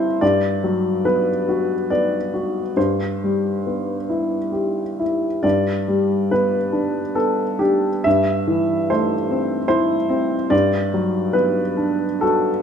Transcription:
Already playing: G2 A3 C4 E4 C5
0.21 G2 D5
0.64 F#3
1.05 B3 B4
1.49 F#4
1.90 B3 D5
2.34 F#4
2.77 G2 C5
3.24 G3
3.67 B3
4.09 E4
4.52 G4
4.99 E4
5.43 G2 D5
5.88 G3
6.31 B3 B4
6.72 D4
7.15 B3 A4
7.59 D4 G4
8.04 G2 E5
8.47 E3
8.90 A3 C5
9.31 C4
9.68 E4 C5
10.09 C4
10.50 G2 D5
10.94 F#3
11.33 B3 B4
11.77 D4
12.21 F#4 A4

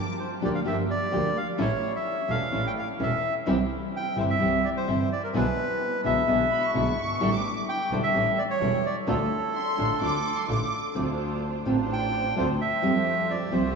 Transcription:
0.20 C5
0.41 D2 D3 F3 A#3 D4 F4 G4 D5
0.55 F5
0.64 G1 D3 F3 A#3 D4 F4 G4 E5
0.90 D5
1.11 D2 D3 F3 A#3 D4 F4 G4
1.37 F5
1.58 A1 E3 A3 C#4 E4 A4 C#5
1.96 E5
2.28 E1 E3 A3 C#4 E4 A4 F5
2.51 A1 E3 A3 C#4 E4 A4
2.67 G5
2.79 F5
2.99 E1 E3 A3 C#4 E4 A4
3.03 E5
3.46 C2 C3 E3 G3 C4 E4 G4
3.97 G5
4.16 G1 C3 E3 G3 C4 E4 G4
4.20 C5
4.30 E5
4.39 C2 C3 E3 G3 C4 E4 G4
4.64 D5
4.77 C5
4.87 G1 C3 E3 G3 C4 E4 G4
5.12 D5
5.24 A#4
5.33 B1 B2 D3 G#3 B3 D4 E4 G#4 B4
6.04 B1 B2 D3 G#3 B3 D4 E4 G#4 E5
6.27 B1 B2 D3 G#3 B3 D4 E4 G#4
6.50 B5
6.63 C#6
6.74 B1 B2 D3 G#3 B3 D4 E4 G#4
6.98 G1
7.20 A1 D3 G3 D4 E4 G4 A4
7.33 D6
7.69 G5
7.90 E1 D3 G3 D4 E4 G4 A4 C5
8.03 E5
8.14 A1 E3 G3 C#4 E4 G4 A4
8.38 D5
8.50 C#5
8.61 E1 E3 G3 C#4 E4 G4 A4
8.86 D5
9.07 D2 D3 A3 D4 F4 A4
9.54 C6
9.77 A1 D3 A3 D4 F4 A4
10.01 D2 D3 A3 D4 F4 A4 D6
10.37 C6
10.48 A1 D3 A3 D4 F4 A4 D6
10.95 D2 D3 A3 C4 D4 F4 C5
11.65 A1 D3 A3 C4 D4 F4 C5
11.93 G5
12.35 D2 D3 A3 C4 D4 F4 C5
12.61 E5
12.82 F2 F3 G3 A3 C4 F4 G4
13.30 D5
13.51 C2 F3 G3 A3 C4 F4 G4 C5

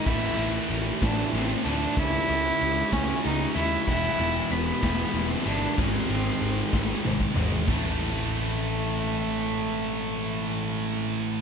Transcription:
0.05 A1 A2 E3 A3 C4 E4, kick, crash
0.37 A1 A2 E3 A3 C4 E4, ride
0.70 A1, ride
1.01 A1 A2 E3 A3 C4 D4 E4, kick, snare, ride
1.33 A1 A2 E3 A3 C4 E4, ride
1.64 D2 A2 E3 A3 C4 D4 E4, ride
1.96 C#2 C#3 G#3 C#4 E4, kick, ride
2.27 C#2 C#3 G#3 C#4 E4, ride
2.61 C#2, ride
2.92 C#2 C#3 G#3 C#4 E4, kick, snare, ride
3.24 C#2 C#3 G#3 C#4 D#4 E4, ride
3.54 D#2 C#3 G#3 C#4 E4, ride
3.87 E1 E2 B2 E3 G#3 B3 E4, kick, crash
4.17 E1 E2 B2 E3 G#3 B3 E4, ride
4.51 E1 B3, ride
4.82 E1 E2 B2 E3 G#3 B3 E4, kick, snare, ride
5.14 E1 E2 B2 E3 G#3 B3 E4, ride
5.29 C4
5.45 G1 E2 B2 E3 G#3 B3 D4 E4, ride
5.76 G#1 G#2 D#3 G#3 C4 D#4, kick, ride
6.09 G#1 G#2 D#3 G#3 C4 D#4, ride
6.42 G#1, ride
6.72 G#1 G#2 D#3 G#3 C4 D#4, kick, snare
7.04 G#1 G#2 D#3 G#3 C4 D#4, mid tom
7.20 kick
7.36 G#1 G#2 D#3 G#3 C4 D#4, floor tom
7.52 floor tom
7.67 A1 A2 E3 A3 C4 E4 A4, kick, open hi-hat

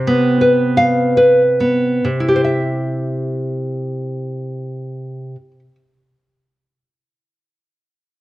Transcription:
Already playing: C3
0.07 B3
0.41 B4
0.77 F5
1.17 B4
1.60 B3
2.05 C3
2.20 E4
2.28 G4
2.36 C5
2.44 E5

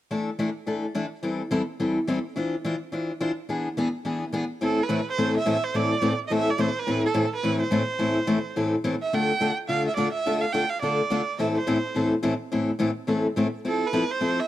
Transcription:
0.11 E3 A3 D4 E4 A4
0.39 E3 A3 D4 E4 A4
0.66 E3 A3 D4 E4 A4
0.95 E3 A3 D4 E4 A4
1.23 E3 G3 C4 E4 A4
1.51 E3 G3 C4 E4 A4
1.80 E3 G3 C4 E4 A4
2.07 E3 G3 C4 E4 A4
2.36 E3 D4 F4 C5
2.65 E3 D4 F4 C5
2.92 E3 D4 F4 C5
3.20 E3 D4 F4 C5
3.49 E3 B3 D4 G#4
3.77 E3 B3 D4 G#4
4.05 E3 B3 D4 G#4
4.32 E3 B3 D4 G#4
4.61 A2 E3 A3 C4 E4 A4
4.83 B4
4.89 A2 E3 A3 C4 E4 A4
5.10 C5
5.18 A2 E3 A3 C4 E4 A4
5.37 E5
5.45 A2 E3 A3 C4 E4 A4
5.64 C5
5.74 A2 E3 A3 C4 E4 A4 D5
6.02 A2 E3 A3 C4 E4 A4
6.28 A2 E3 A3 C4 E4 A4 D#5
6.32 E5
6.50 D5
6.58 A2 E3 A3 C4 E4 A4 C5
6.79 B4
6.87 A2 E3 A3 C4 E4 A4
7.06 A4
7.14 A2 E3 A3 C4 E4 A4
7.35 B4
7.43 A2 E3 A3 C4 E4 A4
7.61 C5
7.71 A2 E3 A3 C4 E4 A4
7.99 A2 E3 A3 C4 E4 A4
8.27 A2 E3 A3 C4 E4 A4
8.56 A2 E3 A3 C4 E4 A4
8.84 A2 E3 A3 C4 E4 A4
9.02 E5
9.13 D3 A3 D4 F4 A4 G5
9.41 D3 A3 D4 F4 A4
9.69 D3 A3 D4 F4 A4 F5
9.87 E5
9.96 D3 A3 D4 F4 A4 D5
10.12 E5
10.26 D3 A3 D4 F4 A4
10.41 F5
10.52 D3 A3 D4 F4 A4 G5
10.70 F5
10.82 D3 A3 D4 F4 A4 D5
11.10 D3 A3 D4 F4 A4
11.39 A2 E3 A3 C4 E4 A4 E5
11.56 C5
11.67 A2 E3 A3 C4 E4 A4
11.95 A2 E3 A3 C4 E4 A4
12.23 A2 E3 A3 C4 E4 A4
12.52 A2 E3 A3 C4 E4 A4
12.79 A2 E3 A3 C4 E4 A4
13.07 A2 E3 A3 C4 E4 A4
13.36 A2 E3 A3 C4 E4 A4
13.65 F3 C4 E4 A4
13.87 B4
13.93 F3 C4 E4 A4
14.11 C5
14.21 F3 C4 E4 A4
14.40 E5

